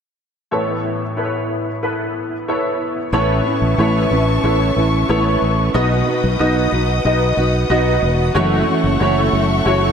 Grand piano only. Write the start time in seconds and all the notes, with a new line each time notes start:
0.51 A1 A2 B3 E4 A4 C#5
1.17 B3 E4 A4 B4
1.24 C#5
1.83 B3 E4 A4 B4
2.48 B3 E4 A4 C#5
3.13 A2 B3 E4 A4 C#5
3.79 B3 E4 A4 C#5
4.44 B3 E4 A4 C#5
5.09 B3 E4 A4 C#5
5.74 B2 B3 D#4 F#4 D#5
6.39 B3 D#4 F#4 D#5
7.05 B3 D#4 F#4 D#5
7.70 B3 D#4 F#4 D#5
8.35 A3 E4 F#4 C#5
9.00 A3 E4 F#4 C#5
9.65 A3 E4 F#4 C#5